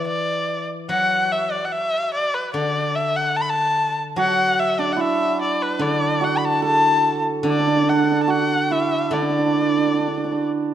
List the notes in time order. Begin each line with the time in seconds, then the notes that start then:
Already playing: E3
0.07 D5
0.89 F#3 F#5
1.32 E5
1.51 D5
1.65 F#5
1.72 E5
2.14 D5
2.34 B4
2.54 D3 D5
2.95 E5
3.16 F#5
3.36 A5
3.42 B5
3.49 A5
4.16 F#3 F#4 F#5
4.59 E5
4.79 D4 D5
4.93 E4 F#5
5.01 E5
5.42 D5
5.62 B4
5.79 D3 D4 D5
6.21 F#4 F#5
6.38 B5
6.45 A5
6.62 A4 A5
7.43 D3 D4
7.48 D4 D5
7.59 D4
7.67 D4
7.76 D4
7.83 D4
7.89 D4 F#5
7.97 D4
8.03 D4
8.12 D4
8.23 A5
8.28 F#4 F#5
8.71 E4 E5
9.11 D3 D4 D5
9.22 D4
9.29 D4
9.38 D4
9.46 D4
9.53 D4
9.61 D4
9.69 D4
9.78 D4
9.87 D4
9.93 D4
10.00 D4
10.07 D4
10.17 D4
10.24 D4
10.32 D4